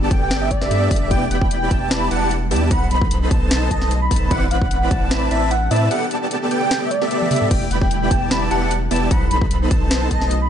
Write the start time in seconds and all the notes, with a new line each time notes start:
Already playing: A3 D4 G4
0.11 G1 B3 G4 A4 D5 G5, kick, closed hi-hat
0.22 G5
0.31 snare, closed hi-hat
0.42 E5
0.51 D5, kick, closed hi-hat
0.61 G1 B3 G4 A4 D5 E5, snare
0.71 G2 B3 G4 A4 D5 E5, closed hi-hat
0.91 G1 D5 E5, kick, open hi-hat
0.96 closed hi-hat
1.11 E1 E3 G3 B3 E4 G4 D5 G5, kick, closed hi-hat
1.31 E1 B3 E4 G4 D5 G5 B5, closed hi-hat
1.42 kick
1.51 closed hi-hat
1.71 E1 B3 E4 G4 D5 A5, kick, closed hi-hat
1.91 B5, snare, closed hi-hat
2.11 E1 B3 E4 G4 D5 F#5 A5, closed hi-hat
2.22 A5
2.31 closed hi-hat
2.51 E2 B3 E4 G4 D5 A5, open hi-hat
2.56 closed hi-hat
2.71 B1 C3 A3 B3 D#4 A4 C5 F#5 B5, kick, closed hi-hat
2.91 B1 B3 D#4 A4 C5 B5, closed hi-hat
3.02 kick
3.11 closed hi-hat
3.31 B1 B3 D#4 A5, kick, closed hi-hat
3.51 snare, closed hi-hat
3.71 B1 B3 D#4 A4 C5 D#5 A5, kick, closed hi-hat
3.82 snare
3.91 closed hi-hat
4.02 B5
4.11 B1 B3 D#4 A4 C5 A5, kick, open hi-hat
4.16 closed hi-hat
4.31 A1 C3 E3 C4 D4 E4 B4 D5 F#5, kick, closed hi-hat
4.51 A1 C4 E4 B4 D5 F#5 B5, closed hi-hat
4.62 kick
4.71 closed hi-hat
4.91 A1 A5, kick, closed hi-hat
5.11 B5, snare, closed hi-hat
5.31 A1 C4 E4 B4 D5 E5 A5, closed hi-hat
5.42 A5
5.51 F#5, closed hi-hat
5.62 F#5
5.71 A2 C4 E4 B4 D5 E5 A5, open hi-hat
5.76 closed hi-hat
5.91 D3 G3 A3 B3 G4 A4 D5 F#5, closed hi-hat
6.11 B3 G4 A4 D5 A5, closed hi-hat
6.31 closed hi-hat
6.51 B3 G4 A4 D5 G5, closed hi-hat
6.62 G5
6.71 snare, closed hi-hat
6.82 E5
6.91 D5, closed hi-hat
7.01 B3 G4 A4 D5 E5, snare
7.11 B3 G4 A4 D5 E5, closed hi-hat
7.21 high tom
7.31 B3 G4 A4 D5 E5, open hi-hat, mid tom
7.36 closed hi-hat
7.42 mid tom
7.51 E1 G3 E4 G4 G5, kick, closed hi-hat, crash
7.71 E1 B3 E4 G4 D5 G5 B5, closed hi-hat
7.82 kick
7.91 closed hi-hat
8.11 E1 B3 A5, kick, closed hi-hat
8.31 B5, snare, closed hi-hat
8.51 E1 B3 E4 G4 D5 F#5 A5, closed hi-hat
8.62 A5
8.71 closed hi-hat
8.91 E1 B3 E4 G4 D5 A5, open hi-hat
8.96 closed hi-hat
9.11 B1 C3 A3 B3 D#4 F#4 A4 F#5 B5, kick, closed hi-hat
9.31 B1 B3 D#4 A4 C5 B5, closed hi-hat
9.42 kick
9.51 closed hi-hat
9.71 B1 A5, kick, closed hi-hat
9.91 snare, closed hi-hat
10.11 B1 D#4 D#5 A5, kick, closed hi-hat
10.22 snare
10.31 closed hi-hat
10.42 B5